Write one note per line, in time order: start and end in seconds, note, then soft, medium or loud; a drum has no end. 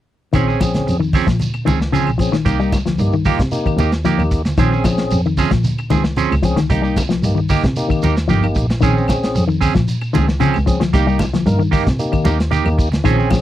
0.33 0.59 A#1 medium
0.33 0.54 D#3 medium
0.33 0.48 F3 medium
0.33 0.97 C4 medium
0.33 0.48 C4 medium
0.33 0.97 C#4 medium
0.33 0.47 C#4 medium
0.33 0.47 G#4 medium
0.33 0.98 G#4 medium
0.33 kick medium
0.33 closed hi-hat medium
0.33 claves medium
0.33 shekere medium
0.48 0.59 C4 soft
0.48 0.60 C#4 soft
0.48 0.60 G#4 medium
0.48 shekere soft
0.60 0.81 F3 medium
0.60 muted clean electric guitar stroke soft
0.60 kick medium
0.60 snare medium
0.60 closed hi-hat soft
0.60 high conga medium
0.60 claves medium
0.60 shekere medium
0.74 0.87 A#1 soft
0.74 snare medium
0.74 closed hi-hat medium
0.74 high conga medium
0.74 shekere soft
0.87 1.26 F2 medium
0.87 muted clean electric guitar stroke soft
0.87 closed hi-hat medium
0.87 shekere medium
0.99 1.20 D#3 medium
0.99 muted clean electric guitar stroke soft
0.99 shekere soft
1.13 1.28 F3 medium
1.13 1.28 C4 medium
1.13 1.27 C#4 medium
1.13 1.27 G#4 medium
1.13 kick medium
1.13 open hi-hat medium
1.13 high conga medium
1.13 claves medium
1.13 shekere medium
1.27 1.64 A#2 medium
1.27 1.47 F3 medium
1.27 muted clean electric guitar stroke soft
1.27 kick medium
1.27 snare medium
1.27 closed hi-hat soft
1.27 shekere soft
1.39 closed hi-hat medium
1.39 high conga medium
1.39 shekere medium
1.54 muted clean electric guitar stroke soft
1.54 claves medium
1.54 shekere soft
1.65 1.92 C#2 medium
1.65 1.86 D#3 medium
1.65 1.80 F3 soft
1.65 1.80 C4 medium
1.65 1.80 C#4 medium
1.65 1.79 G#4 medium
1.65 closed hi-hat soft
1.65 high conga medium
1.65 shekere medium
1.81 muted clean electric guitar stroke soft
1.81 snare medium
1.81 shekere soft
1.92 2.13 C#3 medium
1.92 2.09 F3 medium
1.92 2.10 C4 medium
1.92 2.10 C#4 medium
1.92 2.10 G#4 medium
1.92 closed hi-hat medium
1.92 high conga medium
1.92 shekere medium
2.07 2.32 A#1 medium
2.07 claves medium
2.07 shekere soft
2.18 2.29 F3 medium
2.18 2.36 C4 medium
2.18 2.36 C#4 medium
2.18 2.36 G#4 medium
2.18 muted clean electric guitar stroke soft
2.18 kick medium
2.18 closed hi-hat soft
2.18 shekere medium
2.32 2.53 D#3 medium
2.32 muted clean electric guitar stroke soft
2.32 snare medium
2.32 closed hi-hat soft
2.32 shekere soft
2.45 2.71 C2 medium
2.45 2.60 A#3 medium
2.45 2.78 A#3 medium
2.45 2.59 D#4 medium
2.45 2.78 D#4 medium
2.45 2.58 G4 medium
2.45 2.78 G4 medium
2.45 kick medium
2.45 closed hi-hat medium
2.45 claves medium
2.45 shekere medium
2.59 2.80 G3 medium
2.59 2.72 D#4 soft
2.59 2.72 G4 soft
2.59 shekere soft
2.72 muted clean electric guitar stroke soft
2.72 kick medium
2.72 snare medium
2.72 closed hi-hat soft
2.72 high conga medium
2.72 claves medium
2.72 shekere medium
2.86 2.98 C2 soft
2.86 3.06 F3 medium
2.86 snare medium
2.86 closed hi-hat soft
2.86 high conga medium
2.86 shekere soft
2.98 3.37 G2 medium
2.98 3.16 A#3 medium
2.98 3.16 D#4 medium
2.98 3.16 G4 medium
2.98 muted clean electric guitar stroke soft
2.98 closed hi-hat medium
2.98 shekere medium
3.13 3.34 D#3 medium
3.13 muted clean electric guitar stroke soft
3.13 shekere soft
3.25 3.40 A#3 medium
3.25 3.42 A#3 medium
3.25 3.39 D#4 medium
3.25 3.42 D#4 medium
3.25 3.42 F4 medium
3.25 3.39 G4 medium
3.25 kick medium
3.25 open hi-hat medium
3.25 high conga medium
3.25 claves medium
3.25 shekere medium
3.39 3.76 C3 medium
3.39 muted clean electric guitar stroke soft
3.39 kick medium
3.39 snare medium
3.39 closed hi-hat soft
3.39 shekere soft
3.52 3.91 A#3 medium
3.52 3.92 D#4 medium
3.52 3.92 G4 medium
3.52 closed hi-hat medium
3.52 shekere medium
3.66 3.86 D#3 medium
3.66 muted clean electric guitar stroke soft
3.66 kick medium
3.66 claves medium
3.66 shekere soft
3.77 4.03 D#2 medium
3.77 3.93 A#3 medium
3.77 3.93 D#4 medium
3.77 3.92 G4 medium
3.77 snare soft
3.77 closed hi-hat soft
3.77 high conga medium
3.77 shekere medium
3.92 muted clean electric guitar stroke soft
3.92 snare medium
3.92 closed hi-hat soft
3.92 shekere soft
4.05 4.25 F3 medium
4.05 4.22 A#3 medium
4.05 4.22 D#4 medium
4.05 4.22 G4 medium
4.05 closed hi-hat medium
4.05 high conga medium
4.05 shekere medium
4.18 4.44 D#2 medium
4.18 4.42 A#3 medium
4.18 4.42 D#4 medium
4.18 4.42 G4 medium
4.18 claves medium
4.18 shekere soft
4.31 muted clean electric guitar stroke soft
4.31 kick medium
4.31 closed hi-hat soft
4.31 shekere medium
4.45 muted clean electric guitar stroke soft
4.45 snare medium
4.45 closed hi-hat soft
4.45 high conga medium
4.45 shekere soft
4.57 4.83 A#1 medium
4.57 4.78 D#3 medium
4.57 4.72 F3 medium
4.57 5.21 C4 medium
4.57 4.73 C4 medium
4.57 5.21 C#4 medium
4.57 4.72 C#4 medium
4.57 5.21 G#4 medium
4.57 4.71 G#4 medium
4.57 kick medium
4.57 closed hi-hat medium
4.57 claves medium
4.57 shekere medium
4.72 4.84 C4 soft
4.72 4.84 C#4 soft
4.72 4.85 G#4 medium
4.72 shekere soft
4.84 5.05 F3 medium
4.84 muted clean electric guitar stroke soft
4.84 kick medium
4.84 snare medium
4.84 closed hi-hat soft
4.84 high conga medium
4.84 claves medium
4.84 shekere medium
4.98 5.11 A#1 soft
4.98 snare medium
4.98 closed hi-hat soft
4.98 shekere soft
5.10 5.49 F2 medium
5.10 muted clean electric guitar stroke soft
5.10 closed hi-hat medium
5.10 shekere medium
5.25 5.46 D#3 medium
5.25 muted clean electric guitar stroke soft
5.25 shekere soft
5.37 5.52 F3 medium
5.37 5.52 C4 medium
5.37 5.52 C#4 medium
5.37 5.51 G#4 medium
5.37 kick medium
5.37 open hi-hat medium
5.37 high conga medium
5.37 claves medium
5.37 shekere medium
5.51 5.88 A#2 medium
5.51 5.71 F3 medium
5.51 muted clean electric guitar stroke soft
5.51 kick medium
5.51 snare medium
5.51 closed hi-hat soft
5.51 shekere soft
5.64 closed hi-hat medium
5.64 high conga medium
5.64 shekere medium
5.78 muted clean electric guitar stroke soft
5.78 claves medium
5.78 shekere soft
5.90 6.16 C#2 medium
5.90 6.11 D#3 medium
5.90 6.04 F3 medium
5.90 6.04 C4 medium
5.90 6.03 G#4 medium
5.90 snare soft
5.90 closed hi-hat soft
5.90 high conga medium
5.90 shekere medium
6.04 muted clean electric guitar stroke soft
6.04 snare medium
6.04 shekere soft
6.16 6.34 F3 medium
6.16 6.34 C4 medium
6.16 6.34 C#4 medium
6.16 6.34 G#4 medium
6.16 muted clean electric guitar stroke medium
6.16 closed hi-hat medium
6.16 high conga medium
6.16 shekere medium
6.31 6.56 C#2 medium
6.31 snare soft
6.31 claves medium
6.31 shekere soft
6.43 6.54 F3 medium
6.43 6.60 C4 medium
6.43 6.60 C#4 medium
6.43 6.60 G#4 medium
6.43 muted clean electric guitar stroke soft
6.43 kick medium
6.43 closed hi-hat soft
6.43 shekere medium
6.56 6.77 D#3 medium
6.56 muted clean electric guitar stroke soft
6.56 snare medium
6.56 closed hi-hat soft
6.56 high conga medium
6.56 shekere soft
6.70 6.95 C2 medium
6.70 7.02 A#3 medium
6.70 6.84 D#4 medium
6.70 7.02 D#4 medium
6.70 6.82 G4 medium
6.70 7.02 G4 medium
6.70 muted clean electric guitar stroke medium
6.70 kick medium
6.70 snare soft
6.70 closed hi-hat medium
6.70 claves medium
6.70 shekere medium
6.82 7.03 G3 medium
6.82 6.96 D#4 soft
6.82 6.96 G4 medium
6.82 shekere soft
6.96 muted clean electric guitar stroke soft
6.96 kick medium
6.96 snare medium
6.96 closed hi-hat soft
6.96 high conga medium
6.96 claves medium
6.96 shekere medium
7.09 7.22 C2 soft
7.09 7.30 F3 medium
7.09 snare medium
7.09 closed hi-hat soft
7.09 shekere soft
7.23 7.61 G2 medium
7.23 7.40 A#3 medium
7.23 7.40 D#4 medium
7.23 7.40 G4 medium
7.23 muted clean electric guitar stroke soft
7.23 closed hi-hat medium
7.23 shekere medium
7.35 7.56 D#3 medium
7.35 muted clean electric guitar stroke soft
7.35 shekere soft
7.49 7.63 A#3 medium
7.49 7.66 A#3 medium
7.49 7.64 D#4 medium
7.49 7.66 D#4 medium
7.49 7.63 G4 medium
7.49 7.66 G4 medium
7.49 kick medium
7.49 open hi-hat medium
7.49 high conga medium
7.49 claves medium
7.49 shekere medium
7.63 8.00 C3 medium
7.63 muted clean electric guitar stroke soft
7.63 kick medium
7.63 snare medium
7.63 closed hi-hat soft
7.63 shekere soft
7.76 8.16 A#3 medium
7.76 8.16 D#4 medium
7.76 8.16 G4 medium
7.76 closed hi-hat medium
7.76 shekere medium
7.89 8.09 D#3 medium
7.89 muted clean electric guitar stroke soft
7.89 kick medium
7.89 claves medium
7.89 shekere soft
8.02 8.28 D#2 medium
8.02 8.17 A#3 medium
8.02 8.16 D#4 medium
8.02 8.16 G4 medium
8.02 closed hi-hat soft
8.02 high conga medium
8.02 shekere medium
8.17 muted clean electric guitar stroke soft
8.17 snare medium
8.17 closed hi-hat soft
8.17 shekere soft
8.28 8.54 G1 medium
8.28 8.49 F3 medium
8.28 8.46 A#3 medium
8.28 8.46 D#4 medium
8.28 8.46 G4 medium
8.28 closed hi-hat medium
8.28 high conga medium
8.28 shekere medium
8.43 8.67 A#3 medium
8.43 8.67 D#4 medium
8.43 8.67 G4 medium
8.43 claves medium
8.43 shekere soft
8.55 8.80 A#1 medium
8.55 muted clean electric guitar stroke soft
8.55 kick medium
8.55 closed hi-hat soft
8.55 shekere medium
8.70 muted clean electric guitar stroke soft
8.70 snare medium
8.70 closed hi-hat soft
8.70 shekere soft
8.81 9.07 A#1 medium
8.81 9.01 D#3 medium
8.81 9.45 C4 medium
8.81 8.96 C4 medium
8.81 9.45 C#4 medium
8.81 8.95 C#4 medium
8.81 9.45 G#4 medium
8.81 8.97 G#4 medium
8.81 muted clean electric guitar stroke medium
8.81 kick medium
8.81 closed hi-hat medium
8.81 claves medium
8.81 shekere medium
8.97 9.07 C4 soft
8.97 9.07 C#4 soft
8.97 shekere soft
9.08 muted clean electric guitar stroke soft
9.08 kick medium
9.08 snare medium
9.08 closed hi-hat soft
9.08 high conga medium
9.08 claves medium
9.08 shekere medium
9.23 9.36 A#1 soft
9.23 snare medium
9.23 closed hi-hat soft
9.23 shekere soft
9.35 9.74 F2 medium
9.35 muted clean electric guitar stroke soft
9.35 closed hi-hat medium
9.35 shekere medium
9.48 9.68 D#3 medium
9.48 muted clean electric guitar stroke soft
9.48 shekere soft
9.61 9.74 C4 medium
9.61 9.74 C#4 medium
9.61 9.74 G#4 medium
9.61 kick medium
9.61 open hi-hat medium
9.61 high conga medium
9.61 claves medium
9.61 shekere medium
9.74 10.12 A#2 medium
9.74 9.95 F3 medium
9.74 muted clean electric guitar stroke soft
9.74 kick medium
9.74 snare medium
9.74 closed hi-hat soft
9.88 closed hi-hat medium
9.88 shekere medium
10.01 muted clean electric guitar stroke soft
10.01 claves medium
10.01 shekere soft
10.13 10.41 C#2 medium
10.13 10.34 D#3 medium
10.13 10.28 F3 medium
10.13 10.27 C4 medium
10.13 10.27 C#4 medium
10.13 10.27 G#4 medium
10.13 closed hi-hat soft
10.13 high conga medium
10.13 shekere medium
10.28 muted clean electric guitar stroke soft
10.28 snare medium
10.28 shekere soft
10.40 10.61 C#3 medium
10.40 10.57 F3 medium
10.40 10.57 C4 medium
10.40 10.57 C#4 medium
10.40 10.57 G#4 medium
10.40 closed hi-hat medium
10.40 high conga medium
10.40 shekere medium
10.54 10.81 C#2 medium
10.54 snare soft
10.54 claves medium
10.54 shekere soft
10.66 10.77 F3 medium
10.66 10.83 C4 medium
10.66 10.83 C#4 medium
10.66 10.83 G#4 medium
10.66 muted clean electric guitar stroke soft
10.66 kick medium
10.66 closed hi-hat medium
10.66 shekere medium
10.80 11.01 F3 medium
10.80 muted clean electric guitar stroke soft
10.80 snare medium
10.80 closed hi-hat medium
10.80 high conga medium
10.80 shekere soft
10.93 11.19 C2 medium
10.93 11.07 A#3 medium
10.93 11.25 A#3 medium
10.93 11.07 D#4 medium
10.93 11.26 D#4 medium
10.93 11.06 G4 medium
10.93 11.26 G4 medium
10.93 kick medium
10.93 snare soft
10.93 closed hi-hat medium
10.93 claves medium
10.93 shekere medium
11.07 11.27 G3 medium
11.07 11.18 D#4 soft
11.07 11.19 G4 soft
11.07 shekere soft
11.19 muted clean electric guitar stroke soft
11.19 kick medium
11.19 snare medium
11.19 closed hi-hat soft
11.19 high conga medium
11.19 claves medium
11.19 shekere medium
11.34 11.46 C2 soft
11.34 11.54 F3 medium
11.34 snare medium
11.34 closed hi-hat medium
11.34 high conga medium
11.34 shekere soft
11.46 11.84 G2 medium
11.46 11.63 A#3 medium
11.46 11.62 D#4 medium
11.46 11.63 A#4 medium
11.46 muted clean electric guitar stroke soft
11.46 closed hi-hat medium
11.46 shekere medium
11.59 11.80 D#3 medium
11.59 muted clean electric guitar stroke soft
11.59 shekere soft
11.71 11.86 A#3 medium
11.71 11.89 A#3 medium
11.71 11.84 D#4 medium
11.71 11.89 D#4 medium
11.71 11.83 G4 medium
11.71 11.89 G4 medium
11.71 kick medium
11.71 open hi-hat medium
11.71 high conga medium
11.71 claves medium
11.71 shekere medium
11.84 12.23 C3 medium
11.84 muted clean electric guitar stroke soft
11.84 kick medium
11.84 snare medium
11.84 closed hi-hat soft
11.84 shekere soft
11.99 12.39 A#3 medium
11.99 12.39 D#4 medium
11.99 12.39 G4 medium
11.99 closed hi-hat medium
11.99 shekere medium
12.12 12.33 D#3 medium
12.12 muted clean electric guitar stroke soft
12.12 kick medium
12.12 claves medium
12.12 shekere soft
12.25 12.50 D#2 medium
12.25 12.39 A#3 medium
12.25 12.38 D#4 medium
12.25 12.38 G4 medium
12.25 snare soft
12.25 closed hi-hat soft
12.25 high conga medium
12.25 shekere medium
12.39 muted clean electric guitar stroke soft
12.39 snare medium
12.39 closed hi-hat medium
12.39 shekere soft
12.51 12.68 A#3 medium
12.51 12.68 D#4 medium
12.51 12.68 G4 medium
12.51 muted clean electric guitar stroke medium
12.51 closed hi-hat medium
12.51 high conga medium
12.51 shekere medium
12.65 12.90 D#2 medium
12.65 12.89 A#3 medium
12.65 12.89 D#4 medium
12.65 12.89 G4 medium
12.65 claves medium
12.65 shekere soft
12.78 muted clean electric guitar stroke soft
12.78 kick medium
12.78 closed hi-hat soft
12.78 shekere medium
12.92 muted clean electric guitar stroke soft
12.92 snare medium
12.92 closed hi-hat soft
12.92 high conga medium
12.92 shekere soft
13.04 13.30 A#1 medium
13.04 13.25 D#3 medium
13.04 13.19 F3 medium
13.04 13.18 C4 medium
13.04 13.41 C4 medium
13.04 13.41 C#4 medium
13.04 13.17 C#4 medium
13.04 13.17 G#4 medium
13.04 13.41 G#4 medium
13.04 kick medium
13.04 closed hi-hat medium
13.04 claves medium
13.04 shekere medium
13.18 13.30 C4 soft
13.18 13.30 C#4 medium
13.18 13.30 G#4 medium
13.18 shekere soft
13.30 13.41 F3 medium
13.30 muted clean electric guitar stroke soft
13.30 kick medium
13.30 snare medium
13.30 closed hi-hat soft
13.30 high conga medium
13.30 claves medium
13.30 shekere medium